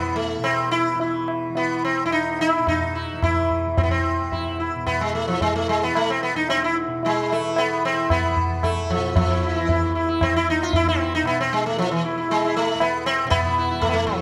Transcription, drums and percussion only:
0.44 tabla na medium
1.00 tabla tin medium
1.28 tabla na medium
1.55 tabla tin medium
2.11 tabla na medium
2.39 tabla na medium
2.67 tabla na medium
2.67 tabla ge medium
3.23 tabla na medium
3.23 tabla ge medium
3.50 tabla ge medium
3.78 tabla tin loud
3.78 tabla ge loud
4.32 tabla tin medium
4.32 tabla ge medium
4.87 tabla na medium
4.87 tabla ge medium
5.41 tabla tin medium
5.41 tabla ge medium
5.68 tabla na medium
5.95 tabla na medium
6.49 tabla tin medium
7.03 tabla tin medium
7.30 tabla na medium
7.56 tabla na medium
8.10 tabla na medium
8.10 tabla ge medium
8.37 tabla ge medium
8.63 tabla na medium
8.63 tabla ge medium
8.90 tabla ge soft
9.16 tabla tin loud
9.16 tabla ge loud
9.69 tabla tin medium
9.69 tabla ge medium
10.21 tabla na medium
10.21 tabla ge medium
10.73 tabla tin medium
10.73 tabla ge medium
11.26 tabla na medium
11.78 tabla tin medium
12.29 tabla tin medium
12.80 tabla na medium
13.31 tabla na medium
13.31 tabla ge medium
13.82 tabla na medium
13.82 tabla ge medium
14.08 tabla ge medium

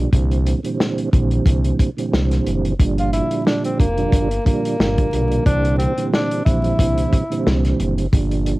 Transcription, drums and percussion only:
0.13 kick loud
0.13 closed hi-hat medium
0.31 closed hi-hat medium
0.46 closed hi-hat medium
0.64 closed hi-hat medium
0.80 snare loud
0.98 closed hi-hat medium
1.13 kick loud
1.13 closed hi-hat medium
1.31 closed hi-hat soft
1.46 kick loud
1.46 closed hi-hat loud
1.64 closed hi-hat medium
1.79 kick medium
1.79 closed hi-hat medium
1.98 closed hi-hat medium
2.14 snare loud
2.31 snare soft
2.31 closed hi-hat medium
2.46 closed hi-hat medium
2.65 closed hi-hat medium
2.79 kick loud
2.79 closed hi-hat medium
2.98 closed hi-hat medium
3.13 closed hi-hat medium
3.31 closed hi-hat medium
3.47 snare loud
3.65 closed hi-hat medium
3.80 kick loud
3.80 closed hi-hat medium
3.98 closed hi-hat soft
4.12 kick loud
4.12 closed hi-hat loud
4.31 closed hi-hat medium
4.46 kick medium
4.46 closed hi-hat medium
4.65 closed hi-hat medium
4.80 snare loud
4.98 kick medium
4.98 closed hi-hat soft
5.13 closed hi-hat medium
5.32 closed hi-hat medium
5.46 kick loud
5.46 closed hi-hat medium
5.65 closed hi-hat medium
5.80 closed hi-hat medium
5.98 closed hi-hat medium
6.13 snare loud
6.31 closed hi-hat medium
6.46 kick loud
6.46 closed hi-hat medium
6.64 closed hi-hat soft
6.79 kick loud
6.79 closed hi-hat medium
6.98 closed hi-hat medium
7.13 kick medium
7.13 closed hi-hat medium
7.32 closed hi-hat medium
7.47 snare loud
7.65 snare soft
7.65 closed hi-hat medium
7.80 closed hi-hat medium
7.98 closed hi-hat medium
8.13 kick loud
8.13 closed hi-hat medium
8.31 closed hi-hat soft
8.46 closed hi-hat medium

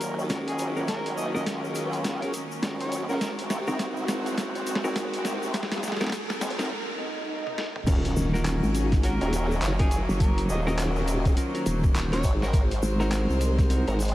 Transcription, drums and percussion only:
0.01 closed hi-hat medium
0.01 shaker medium
0.19 shaker soft
0.30 kick medium
0.30 snare medium
0.30 closed hi-hat medium
0.30 shaker medium
0.48 closed hi-hat medium
0.48 shaker soft
0.59 closed hi-hat medium
0.59 shaker medium
0.77 shaker soft
0.88 kick medium
0.88 snare medium
0.88 closed hi-hat medium
0.88 shaker soft
1.06 closed hi-hat medium
1.06 shaker soft
1.18 shaker medium
1.36 shaker soft
1.46 kick loud
1.46 snare medium
1.46 closed hi-hat medium
1.46 shaker soft
1.64 shaker soft
1.75 closed hi-hat medium
1.75 shaker medium
1.93 closed hi-hat soft
1.93 shaker soft
2.04 kick medium
2.04 snare medium
2.04 closed hi-hat medium
2.04 shaker medium
2.22 closed hi-hat soft
2.22 shaker soft
2.34 closed hi-hat medium
2.34 shaker loud
2.51 shaker soft
2.63 kick medium
2.63 snare medium
2.63 closed hi-hat medium
2.63 shaker soft
2.80 closed hi-hat medium
2.80 shaker soft
2.92 closed hi-hat medium
2.92 shaker loud
3.09 shaker soft
3.21 kick medium
3.21 snare medium
3.21 closed hi-hat medium
3.21 shaker medium
3.39 closed hi-hat medium
3.39 shaker soft
3.50 snare medium
3.50 shaker medium
3.67 shaker soft
3.79 kick loud
3.79 snare medium
3.79 closed hi-hat medium
3.79 shaker soft
3.97 shaker soft
4.08 snare medium
4.08 closed hi-hat medium
4.08 shaker medium
4.26 closed hi-hat soft
4.26 shaker soft
4.38 kick medium
4.38 snare medium
4.38 closed hi-hat medium
4.38 shaker medium
4.55 closed hi-hat soft
4.55 shaker soft
4.67 closed hi-hat medium
4.67 shaker loud
4.75 snare medium
4.84 shaker soft
4.96 kick loud
4.96 snare medium
4.96 closed hi-hat medium
4.96 shaker medium
5.13 closed hi-hat medium
5.13 shaker soft
5.25 snare medium
5.25 closed hi-hat medium
5.25 shaker medium
5.42 shaker soft
5.54 kick loud
5.54 snare medium
5.54 closed hi-hat medium
5.54 shaker medium
5.63 snare medium
5.72 snare medium
5.72 closed hi-hat medium
5.72 shaker soft
5.78 snare soft
5.83 snare soft
5.83 shaker medium
5.88 snare soft
5.92 snare medium
5.97 snare medium
6.01 snare medium
6.01 shaker soft
6.04 snare medium
6.07 snare medium
6.10 snare medium
6.12 kick loud
6.12 snare loud
6.12 closed hi-hat medium
6.12 shaker medium
6.30 snare medium
6.30 shaker soft
6.41 snare loud
6.41 closed hi-hat medium
6.41 shaker medium
6.50 closed hi-hat medium
6.59 snare medium
6.59 closed hi-hat soft
6.59 shaker soft
6.65 closed hi-hat soft
7.47 high tom soft
7.58 snare medium
7.76 mid tom medium
7.87 kick loud
7.87 closed hi-hat medium
7.87 crash loud
7.87 shaker medium
8.05 closed hi-hat medium
8.05 shaker soft
8.16 shaker medium
8.34 snare soft
8.34 shaker soft
8.45 clap loud
8.45 closed hi-hat medium
8.45 shaker medium
8.63 shaker soft
8.75 closed hi-hat medium
8.75 shaker medium
8.92 kick loud
8.92 snare soft
8.92 closed hi-hat soft
8.92 shaker soft
9.03 closed hi-hat medium
9.03 shaker soft
9.21 closed hi-hat soft
9.21 shaker soft
9.33 closed hi-hat medium
9.33 shaker medium
9.51 shaker soft
9.62 clap loud
9.62 closed hi-hat medium
9.62 shaker medium
9.79 kick loud
9.79 closed hi-hat medium
9.79 shaker soft
9.91 closed hi-hat medium
9.91 shaker medium
10.09 shaker soft
10.20 kick loud
10.20 closed hi-hat medium
10.20 shaker medium
10.38 closed hi-hat medium
10.38 shaker soft
10.49 shaker medium
10.67 snare soft
10.67 shaker soft
10.79 clap loud
10.79 closed hi-hat medium
10.79 shaker medium
10.96 shaker soft
11.08 closed hi-hat medium
11.08 shaker loud
11.25 kick loud
11.25 closed hi-hat soft
11.25 shaker soft
11.37 closed hi-hat medium
11.37 shaker medium
11.55 closed hi-hat soft
11.55 shaker soft
11.66 closed hi-hat medium
11.66 shaker medium
11.84 kick loud
11.84 shaker soft
11.95 clap loud
11.95 closed hi-hat medium
11.95 shaker medium
12.13 clap soft
12.13 closed hi-hat medium
12.13 shaker soft
12.15 clap soft
12.19 clap soft
12.21 clap soft
12.23 kick medium
12.23 clap soft
12.23 closed hi-hat medium
12.23 shaker loud
12.42 snare soft
12.42 shaker soft
12.53 kick loud
12.53 closed hi-hat medium
12.53 shaker medium
12.71 closed hi-hat medium
12.71 shaker soft
12.82 shaker medium
13.00 snare soft
13.00 shaker soft
13.12 clap loud
13.12 closed hi-hat medium
13.12 shaker medium
13.30 shaker soft
13.41 closed hi-hat medium
13.41 shaker medium
13.58 kick loud
13.58 snare soft
13.58 closed hi-hat soft
13.58 shaker soft
13.70 closed hi-hat medium
13.70 shaker medium
13.88 closed hi-hat soft
13.88 shaker soft
13.99 closed hi-hat soft
13.99 shaker loud
14.02 closed hi-hat soft
14.05 closed hi-hat soft
14.08 closed hi-hat soft
14.08 closed hi-hat medium

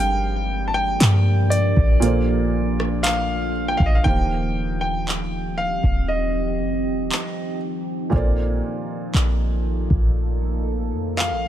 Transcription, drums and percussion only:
1.01 clap loud
1.01 closed hi-hat medium
1.52 closed hi-hat medium
1.77 kick medium
2.02 closed hi-hat medium
2.80 cross-stick medium
3.04 clap loud
3.04 closed hi-hat medium
3.80 kick loud
4.06 kick loud
5.09 clap loud
5.83 kick medium
7.12 clap loud
8.13 kick loud
9.15 clap loud
9.90 kick medium
11.19 clap loud

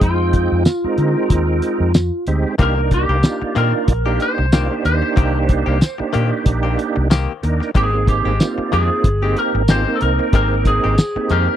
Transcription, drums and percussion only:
0.01 kick loud
0.01 closed hi-hat medium
0.33 kick medium
0.33 closed hi-hat medium
0.65 snare loud
0.65 closed hi-hat medium
0.65 tambourine loud
0.98 closed hi-hat medium
1.30 kick medium
1.30 closed hi-hat medium
1.62 closed hi-hat medium
1.94 snare loud
1.94 closed hi-hat medium
1.94 tambourine loud
2.27 closed hi-hat medium
2.59 kick loud
2.59 closed hi-hat medium
2.91 kick medium
2.91 closed hi-hat medium
3.23 snare loud
3.23 closed hi-hat medium
3.23 tambourine medium
3.56 closed hi-hat medium
3.88 kick medium
3.88 closed hi-hat medium
4.20 closed hi-hat medium
4.52 snare medium
4.52 closed hi-hat medium
4.52 tambourine loud
4.85 closed hi-hat medium
5.17 kick loud
5.17 closed hi-hat medium
5.49 kick medium
5.49 closed hi-hat medium
5.81 snare medium
5.81 closed hi-hat medium
5.81 tambourine medium
6.14 closed hi-hat medium
6.46 kick medium
6.46 closed hi-hat medium
6.79 closed hi-hat medium
7.11 snare loud
7.11 closed hi-hat medium
7.11 tambourine loud
7.43 closed hi-hat medium
7.62 snare soft
7.75 kick loud
7.75 closed hi-hat medium
8.08 kick medium
8.08 closed hi-hat medium
8.40 snare medium
8.40 closed hi-hat medium
8.40 tambourine loud
8.73 closed hi-hat medium
9.04 kick medium
9.04 closed hi-hat medium
9.37 closed hi-hat medium
9.68 snare loud
9.68 closed hi-hat medium
9.68 tambourine loud
10.01 closed hi-hat medium
10.33 kick loud
10.33 closed hi-hat medium
10.65 kick medium
10.65 closed hi-hat medium
10.98 snare loud
10.98 closed hi-hat medium
10.98 tambourine loud
11.29 closed hi-hat medium

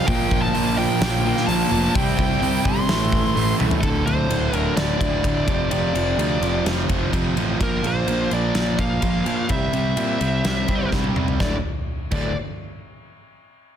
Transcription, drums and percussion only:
0.08 kick loud
0.08 open hi-hat medium
0.31 kick medium
0.55 open hi-hat medium
1.02 snare loud
1.02 open hi-hat medium
1.37 snare soft
1.49 open hi-hat medium
1.95 kick loud
1.95 open hi-hat medium
2.19 kick medium
2.42 open hi-hat medium
2.65 kick medium
2.89 snare loud
2.89 open hi-hat medium
3.12 kick medium
3.37 open hi-hat medium
3.60 high tom medium
3.71 floor tom loud
3.83 kick loud
3.83 ride medium
4.07 ride medium
4.31 ride medium
4.53 ride medium
4.77 snare loud
4.77 ride medium
5.01 kick medium
5.01 ride medium
5.24 kick medium
5.24 ride medium
5.48 kick loud
5.48 ride medium
5.71 ride medium
5.95 ride medium
6.19 ride medium
6.43 ride medium
6.66 snare loud
6.66 ride medium
6.89 kick medium
6.89 ride medium
7.13 kick medium
7.13 ride medium
7.37 ride medium
7.61 kick medium
7.61 ride medium
7.84 ride medium
8.08 ride medium
8.31 ride soft
8.55 snare loud
8.55 ride medium
8.79 kick medium
8.79 ride medium
9.02 kick medium
9.02 ride medium
9.26 ride medium
9.49 kick medium
9.49 ride medium
9.73 ride medium
9.97 ride medium
10.21 ride medium
10.45 snare medium
10.45 ride medium
10.68 kick medium
10.68 ride medium
10.92 kick medium
10.92 snare medium
11.04 high tom medium
11.16 mid tom medium
11.28 floor tom medium
11.40 kick medium
11.40 snare medium
12.11 kick loud
12.11 crash medium

